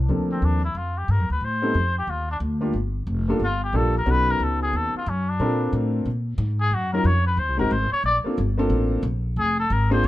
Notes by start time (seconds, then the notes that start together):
0.09 D2 F3 A#3 C4 D4 A4
0.31 C4
0.42 D#2 D4
0.65 E4
0.75 F2 F4
0.98 G4
1.08 G2 A#4
1.20 F2
1.30 D2 B4
1.41 A2
1.45 C5
1.62 G3 B3 C4 D#4 A4
1.75 F2
1.98 G4
2.07 D#2 F4
2.31 D4
2.40 D2
2.61 G3 A#3 D4 F4 G4
2.73 G1
3.07 F1
3.28 G3 A#3 D4 F4 A4
3.39 G1
3.44 F4
3.64 G4
3.73 A#1 G3 A#3 D4 F4 A4
3.98 A#4
4.06 B1 B3 C#4 D#4 F#4 A4
4.11 B4
4.31 A#4
4.40 C#2 A4
4.62 G#4
4.73 D#2 A4
4.94 F4, muted upright bass stroke
5.06 F#2 C#4
5.29 D4
5.40 A#2 C4 D4 F4 A4 A#4
5.73 A2
6.06 A#2
6.38 G#2
6.61 G#4
6.71 F#2 F#4
6.92 F#3 C#4 D#4 F4 A#4
7.04 F2 C#5
7.27 B4
7.37 D#2 C5
7.49 C2
7.57 G#1 G#3 C4 D#4 F#4 A#4
7.71 G#1 C5
7.91 C#5, muted upright bass stroke
8.03 A#1 D5
8.24 A#3 C4 D4 F4 A4, muted upright bass stroke
8.38 G1
8.58 A#3 C4 D4 F4 A4
8.70 A1
9.03 A#1
9.36 F1 G#4
9.60 A4
9.70 G#1 A#4
9.90 A#3 C4 D4 F4 G#4 C5
10.04 A#1